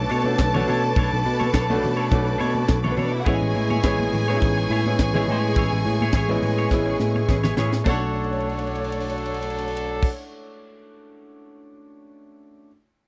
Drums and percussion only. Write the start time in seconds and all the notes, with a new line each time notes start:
0.09 open hi-hat
0.24 high conga
0.39 kick, snare, clap, closed hi-hat, muted conga
0.55 high conga, low conga
0.67 open hi-hat, muted conga, low conga
0.96 kick, closed hi-hat, muted conga
1.26 open hi-hat
1.41 high conga
1.54 kick, snare, clap, closed hi-hat, muted conga
1.70 high conga
1.84 open hi-hat, muted conga, low conga
2.11 kick, closed hi-hat, muted conga
2.40 open hi-hat, muted conga
2.55 high conga
2.68 kick, snare, clap, closed hi-hat, muted conga
2.85 high conga, low conga
2.97 open hi-hat, low conga
3.26 kick, closed hi-hat, muted conga
3.55 open hi-hat, muted conga
3.71 high conga
3.84 kick, snare, clap, closed hi-hat, muted conga
3.99 high conga
4.14 open hi-hat, muted conga, low conga
4.42 kick, closed hi-hat
4.70 open hi-hat
4.85 high conga
4.99 kick, snare, clap, closed hi-hat, muted conga
5.15 high conga, low conga
5.27 open hi-hat, low conga
5.56 kick, closed hi-hat, muted conga
5.85 open hi-hat, muted conga
6.01 high conga
6.13 kick, snare, clap, closed hi-hat, muted conga
6.29 high conga
6.43 open hi-hat, muted conga, low conga
6.71 kick, snare, muted conga
7.00 snare, muted conga
7.15 high conga
7.29 kick, snare, muted conga
7.44 snare, high conga, low conga
7.57 snare, low conga
7.73 snare
7.86 kick, crash, high conga
8.15 crash
8.24 ride
8.33 crash
8.40 ride
8.49 crash
8.59 ride
8.67 crash
8.75 ride
8.84 crash
8.92 ride
9.00 crash
9.10 ride
9.18 crash
9.26 ride
9.34 crash
9.42 ride
9.50 crash
9.58 ride
9.68 crash
9.77 ride
10.02 kick, crash